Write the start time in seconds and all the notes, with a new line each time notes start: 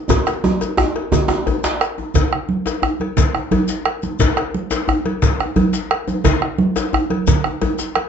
0.09 bombo low, cowbell, djembe slap, djembe tone, djembe bass, low conga, shekere
0.26 bombo rim, cowbell, djembe slap, high conga, shekere
0.44 djembe slap, high conga, djembe tone
0.61 cowbell, djembe tone, shekere
0.77 bombo rim, djembe tone, djembe bass
0.96 cowbell
1.12 bombo rim, bombo low, cowbell, djembe tone, low conga, shekere
1.28 bombo rim, djembe tone
1.30 djembe tone
1.46 bombo rim, cowbell, djembe slap, djembe bass
1.64 bombo rim, djembe slap, high conga, shekere
1.81 bombo rim, cowbell, shekere
1.98 high conga, djembe tone
2.14 bombo low, cowbell, djembe slap, low conga, djembe bass, shekere
2.33 bombo rim
2.49 high conga
2.65 bombo rim, cowbell, djembe slap, high conga, djembe tone, shekere
2.82 bombo rim, djembe bass
3.00 bombo rim, cowbell, high conga
3.17 bombo low, cowbell, djembe slap, low conga, shekere
3.35 bombo rim, djembe tone
3.51 cowbell, high conga, djembe bass
3.68 bombo rim, djembe slap, shekere
3.86 bombo rim, cowbell, high conga
4.03 high conga, djembe tone, shekere
4.19 bombo low, cowbell, djembe slap, djembe bass, low conga, shekere
4.37 bombo rim, cowbell
4.54 high conga
4.71 bombo rim, cowbell, djembe slap, djembe tone, high conga, shekere
4.88 bombo rim, djembe bass
5.05 cowbell, high conga
5.22 bombo low, cowbell, djembe slap, low conga, shekere
5.40 bombo rim, djembe tone
5.56 cowbell, high conga, djembe bass
5.73 bombo rim, djembe slap, shekere
5.91 bombo rim, cowbell, high conga
6.08 djembe tone, high conga, shekere
6.24 bombo low, cowbell, djembe slap, low conga, djembe bass, shekere
6.42 bombo rim
6.58 high conga
6.76 bombo rim, cowbell, djembe slap, djembe tone, shekere
6.93 bombo rim, djembe bass
7.10 bombo rim, cowbell, high conga
7.27 bombo low, cowbell, djembe slap, low conga, shekere
7.44 bombo rim, djembe tone
7.62 cowbell, high conga, djembe bass
7.79 bombo rim, djembe slap, shekere
7.95 bombo rim, cowbell, high conga